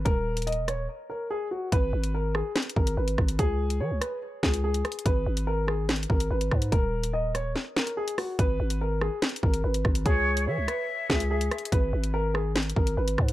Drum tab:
HH |x-----------------x--x--x--x--------x-----------------------------------------------------------|x-----------------x-----------------------------x---x---x---------x-----------x-----------x-----|x-----------------x-----------------x-----------------------------x-----------x-----x---x---x---|x-----------------x-----------------------------x---x---x---------x-----------x-----------x-----|
SD |------------------------------------r-----------------------------------------------------------|------------------------------------r-----------o-----------------------------------r-----------|------------------------------------r-----------------------o-----------------------r-----------|------------------------------------r-----------o-----------------------------------r-----------|
BD |o-----------------------------------------------------------------------------------------------|o-----------------------------------------------------------o-----------------------o-----------|o-----------------------------------------------------------o-----------------------------------|o-----------------------------------------------------------o-----------------------o-----------|

HH |x-----------------x-----------------x-----------------------------x-----------x-----o-----------|x-----------------x-----------------------------x---x---x---------x-----------x-----------x-----|x-----------------x-----------------x-----------------------------x-----------x-----x---x---x---|x-----------------x-----------------------------x---x---x---------x-----------x-----------x-----|
SD |------------------------------------r-----------o-----------o-----------------------r-----------|------------------------------------r-----------o-----------------------------------r-----------|------------------------------------r-----------------------o-----------------------r-----------|------------------------------------r-----------o-----------------------------------r-----------|
BD |o-----------------------------------------------------------------------------------------------|o-----------------------------------------------------------o-----------------------o-----------|o-----------------------------------------------------------o-----------------------------------|o-----------------------------------------------------------o-----------------------o-----------|